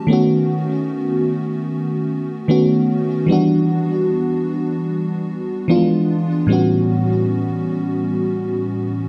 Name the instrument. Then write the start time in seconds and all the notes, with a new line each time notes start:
fm electric piano
0.07 D#3 A3 B3
0.11 C#4 F#4
2.48 D#3 A3 B3 C#4 F#4
3.26 E3 G3 B3
3.31 D4 F#4
5.68 E3 F3 B3 D4 F4
5.75 G#3
6.47 A2 E3 G3 B3
6.51 C#4 F#4